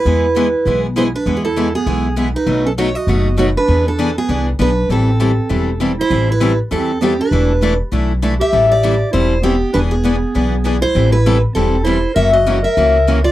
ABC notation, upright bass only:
X:1
M:4/4
L:1/8
Q:"Swing" 1/4=198
K:Am
V:1 name="Upright bass" clef=bass
E,,4 B,,,4 | E,,4 B,,,4 | B,,,4 ^F,,,4 | E,,4 C,,2 B,,,2 |
A,,,4 E,,,4 | A,,,4 E,,4 | E,,,4 B,,,4 | A,,,4 E,,,4 |
E,,,4 B,,,4 | A,,,4 E,,,4 | ^F,,,4 ^C,,4 |]